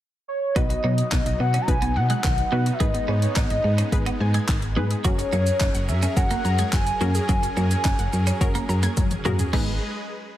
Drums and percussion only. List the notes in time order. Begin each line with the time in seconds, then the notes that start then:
0.56 kick, closed hi-hat
0.70 closed hi-hat
0.98 closed hi-hat
1.12 kick, clap, closed hi-hat
1.26 closed hi-hat
1.54 closed hi-hat
1.68 kick, closed hi-hat
1.82 closed hi-hat
2.10 closed hi-hat
2.24 kick, clap, closed hi-hat
2.38 closed hi-hat
2.66 closed hi-hat
2.80 kick, closed hi-hat
2.95 closed hi-hat
3.22 closed hi-hat
3.36 kick, clap, closed hi-hat
3.50 closed hi-hat
3.78 closed hi-hat
3.92 kick, closed hi-hat
4.06 closed hi-hat
4.34 closed hi-hat
4.48 kick, clap, closed hi-hat
4.62 closed hi-hat
4.91 closed hi-hat
5.05 kick, closed hi-hat, shaker
5.19 closed hi-hat, shaker
5.33 shaker
5.47 closed hi-hat, shaker
5.61 kick, clap, closed hi-hat, shaker
5.75 closed hi-hat, shaker
5.89 shaker
6.03 closed hi-hat, shaker
6.17 kick, closed hi-hat, shaker
6.31 closed hi-hat, shaker
6.45 shaker
6.59 closed hi-hat, shaker
6.73 kick, clap, closed hi-hat, shaker
6.87 closed hi-hat, shaker
7.01 shaker
7.15 closed hi-hat, shaker
7.29 kick, closed hi-hat, shaker
7.43 closed hi-hat, shaker
7.57 shaker
7.71 closed hi-hat, shaker
7.85 kick, clap, closed hi-hat, shaker
7.99 closed hi-hat, shaker
8.13 shaker
8.27 closed hi-hat, shaker
8.41 kick, closed hi-hat, shaker
8.55 closed hi-hat, shaker
8.69 shaker
8.83 closed hi-hat, shaker
8.97 kick, closed hi-hat, high tom, shaker
9.11 closed hi-hat, mid tom, shaker
9.25 mid tom, shaker
9.39 closed hi-hat, floor tom, shaker
9.53 kick, crash